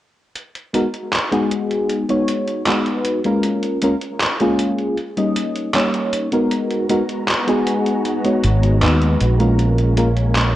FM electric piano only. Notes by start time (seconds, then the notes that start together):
0.74 G#3 B3 D#4 F#4 A#4
1.31 G#3 B3 D#4 F#4 G#4
2.09 G#3 B3 D#4 F#4 C#5
2.66 G#3 B3 D#4 F#4 B4
3.24 G#3 A#3 C#4 F4 A#4
3.82 G#3 A#3 C#4 F4 A#4
4.40 G#3 A#3 C#4 F4 G#4
5.17 G3 A#3 C#4 D#4 D#5
5.74 G3 A#3 C#4 D#4 C#5
6.32 G#3 B3 D#4 F#4 A#4
6.89 G#3 B3 D#4 F#4 A#4
7.47 G#3 B3 D#4 F#4 G#4
8.24 G#3 B3 D#4 F#4 C#5
8.82 G#3 B3 D#4 F#4 B4
9.39 G#3 A#3 C#4 F4 A#4
9.97 G#3 A#3 C#4 F4 A#4